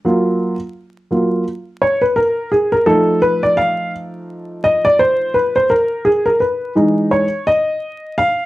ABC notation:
X:1
M:4/4
L:1/16
Q:"Swing 16ths" 1/4=85
K:Gb
V:1 name="Upright piano"
z8 z2 d c B2 A B | =A2 c =d f2 z4 e d =c2 _c =c | B2 ^G B =B2 z2 d2 ^d4 f2 |]
V:2 name="Upright piano"
[G,B,F]2 z4 [G,B,F]2 z8 | [F,=A,E]16 | z6 [=E,^G,^D]2 z8 |]